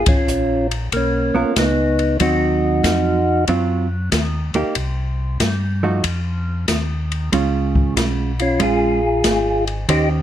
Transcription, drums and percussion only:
0.06 kick medium
0.06 ride medium
0.28 hi-hat pedal medium
0.71 ride soft
0.92 kick soft
0.92 ride medium
1.56 kick soft
1.56 snare medium
1.56 hi-hat pedal soft
1.56 ride medium
1.99 ride soft
2.20 kick soft
2.20 ride medium
2.84 kick soft
2.84 snare medium
2.84 hi-hat pedal medium
2.84 ride medium
3.48 kick soft
3.48 ride medium
4.12 kick soft
4.12 snare medium
4.12 hi-hat pedal medium
4.12 ride medium
4.54 ride soft
4.75 kick soft
4.75 ride medium
5.40 kick soft
5.40 snare medium
5.40 hi-hat pedal medium
5.40 ride medium
6.04 kick soft
6.04 ride medium
6.68 kick soft
6.68 snare medium
6.68 hi-hat pedal medium
6.68 ride medium
7.12 ride soft
7.33 kick soft
7.33 ride medium
7.75 kick medium
7.97 kick soft
7.97 snare medium
7.97 hi-hat pedal medium
7.97 ride medium
8.39 ride soft
8.60 kick soft
8.60 ride medium
9.24 kick soft
9.24 snare medium
9.24 hi-hat pedal medium
9.24 ride medium
9.67 ride soft
9.89 kick soft
9.89 ride medium

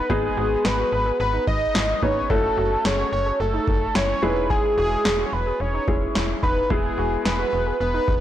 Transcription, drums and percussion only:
0.10 kick loud
0.65 snare loud
1.47 kick loud
1.75 snare loud
2.03 kick medium
2.30 kick loud
2.85 snare loud
3.68 kick loud
3.95 snare loud
4.50 kick loud
5.05 snare loud
5.88 kick loud
6.15 snare loud
6.43 kick medium
6.70 kick loud
7.25 snare loud
8.08 kick loud

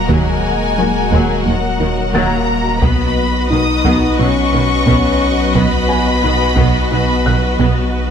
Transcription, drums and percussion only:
0.09 taiko medium
1.12 taiko medium
2.14 taiko medium
2.82 taiko loud
3.85 taiko medium
4.86 taiko medium
5.55 taiko loud
6.57 taiko medium
7.59 taiko medium

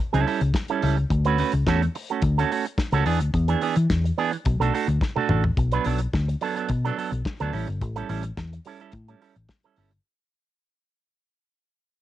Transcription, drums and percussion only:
0.14 closed hi-hat medium
0.28 open hi-hat medium
0.41 closed hi-hat soft
0.54 kick loud
0.54 snare loud
0.54 closed hi-hat medium
0.68 closed hi-hat soft
0.82 open hi-hat medium
0.97 closed hi-hat soft
1.10 kick loud
1.10 closed hi-hat medium
1.25 closed hi-hat medium
1.38 open hi-hat medium
1.52 closed hi-hat medium
1.66 kick loud
1.66 snare loud
1.66 closed hi-hat medium
1.82 closed hi-hat soft
1.95 open hi-hat medium
2.10 closed hi-hat soft
2.22 kick loud
2.22 closed hi-hat medium
2.39 closed hi-hat medium
2.52 open hi-hat medium
2.65 closed hi-hat soft
2.78 kick loud
2.78 snare loud
2.78 closed hi-hat medium
2.92 closed hi-hat soft
3.06 open hi-hat medium
3.21 closed hi-hat medium
3.34 kick loud
3.34 closed hi-hat medium
3.48 closed hi-hat medium
3.61 open hi-hat medium
3.75 closed hi-hat medium
3.90 kick loud
3.90 snare loud
3.90 closed hi-hat medium
4.05 closed hi-hat soft
4.18 open hi-hat medium
4.33 closed hi-hat soft
4.45 kick loud
4.45 closed hi-hat medium
4.61 closed hi-hat medium
4.75 open hi-hat medium
4.89 closed hi-hat soft
5.01 kick loud
5.01 snare medium
5.17 high tom medium
5.29 mid tom loud
5.44 floor tom loud
5.57 kick loud
5.57 closed hi-hat medium
5.72 closed hi-hat soft
5.84 open hi-hat medium
5.99 closed hi-hat medium
6.14 kick loud
6.14 snare loud
6.14 closed hi-hat medium
6.29 closed hi-hat soft
6.41 open hi-hat medium
6.57 closed hi-hat soft
6.69 kick loud
6.69 closed hi-hat medium
6.85 closed hi-hat soft
6.98 open hi-hat medium
7.13 closed hi-hat soft
7.25 kick loud
7.25 snare loud
7.25 closed hi-hat medium
7.40 closed hi-hat soft
7.53 open hi-hat medium
7.67 closed hi-hat soft
7.81 kick loud
7.81 closed hi-hat medium
7.96 closed hi-hat medium
8.09 open hi-hat medium
8.23 closed hi-hat medium
8.37 kick loud
8.37 snare loud
8.37 closed hi-hat medium
8.53 closed hi-hat soft
8.65 open hi-hat medium
8.80 closed hi-hat soft
8.92 kick loud
8.92 closed hi-hat medium
9.08 closed hi-hat soft
9.22 open hi-hat medium
9.36 closed hi-hat soft
9.49 kick loud
9.49 snare loud
9.49 closed hi-hat medium
9.63 closed hi-hat soft
9.76 open hi-hat medium
9.91 closed hi-hat soft

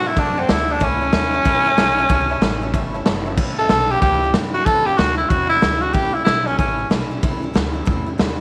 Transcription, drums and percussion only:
0.17 kick loud
0.17 open hi-hat soft
0.49 snare loud
0.49 open hi-hat medium
0.81 kick loud
0.81 open hi-hat medium
1.13 snare loud
1.13 open hi-hat medium
1.46 kick loud
1.46 open hi-hat soft
1.78 snare loud
1.78 open hi-hat medium
2.10 kick loud
2.10 open hi-hat medium
2.42 snare loud
2.42 open hi-hat soft
2.74 kick loud
2.74 open hi-hat soft
3.06 snare loud
3.06 open hi-hat soft
3.37 kick loud
3.37 crash loud
3.69 snare loud
3.69 open hi-hat medium
4.02 kick loud
4.02 open hi-hat medium
4.34 snare loud
4.34 open hi-hat medium
4.66 kick loud
4.66 open hi-hat medium
4.99 snare loud
4.99 open hi-hat medium
5.30 kick loud
5.30 open hi-hat soft
5.62 snare loud
5.62 open hi-hat medium
5.94 kick loud
5.94 open hi-hat soft
6.27 snare loud
6.27 open hi-hat medium
6.59 kick loud
6.59 open hi-hat soft
6.91 snare loud
6.91 open hi-hat medium
7.23 kick loud
7.23 open hi-hat medium
7.56 snare loud
7.56 open hi-hat soft
7.87 kick loud
7.87 open hi-hat soft
8.19 snare loud
8.19 open hi-hat soft

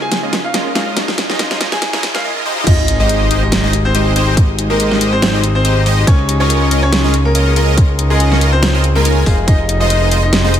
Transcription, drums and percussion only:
0.12 snare medium
0.12 closed hi-hat medium
0.33 snare medium
0.33 closed hi-hat medium
0.54 snare medium
0.54 closed hi-hat medium
0.75 snare medium
0.75 closed hi-hat medium
0.97 snare medium
0.97 closed hi-hat medium
1.08 snare medium
1.18 snare medium
1.18 closed hi-hat medium
1.30 snare medium
1.39 snare medium
1.39 closed hi-hat medium
1.51 snare medium
1.61 snare loud
1.61 closed hi-hat medium
1.72 snare medium
1.82 snare loud
1.82 closed hi-hat medium
1.93 snare medium
2.03 snare loud
2.03 closed hi-hat medium
2.15 snare medium
2.67 kick loud
2.67 closed hi-hat medium
2.67 crash loud
2.88 closed hi-hat medium
3.09 closed hi-hat medium
3.31 closed hi-hat medium
3.52 snare loud
3.52 closed hi-hat medium
3.64 snare soft
3.73 closed hi-hat medium
3.95 closed hi-hat medium
4.16 closed hi-hat medium
4.37 kick loud
4.37 closed hi-hat medium
4.59 closed hi-hat medium
4.80 closed hi-hat medium
4.91 snare soft
5.01 closed hi-hat medium
5.22 snare loud
5.22 closed hi-hat medium
5.44 closed hi-hat medium
5.65 closed hi-hat medium
5.86 open hi-hat medium
6.07 kick loud
6.07 closed hi-hat medium
6.29 closed hi-hat medium
6.50 closed hi-hat medium
6.71 closed hi-hat medium
6.93 snare loud
6.93 closed hi-hat medium
7.04 snare soft
7.14 closed hi-hat medium
7.35 closed hi-hat medium
7.56 closed hi-hat medium
7.78 kick loud
7.78 closed hi-hat medium
7.99 closed hi-hat medium
8.20 closed hi-hat medium
8.32 snare soft
8.41 closed hi-hat medium
8.63 snare loud
8.63 closed hi-hat medium
8.84 closed hi-hat medium
9.05 closed hi-hat medium
9.26 kick medium
9.26 open hi-hat medium
9.48 kick loud
9.48 closed hi-hat medium
9.69 closed hi-hat medium
9.90 closed hi-hat medium
10.11 closed hi-hat medium
10.33 snare loud
10.33 closed hi-hat medium
10.44 snare soft
10.54 closed hi-hat medium

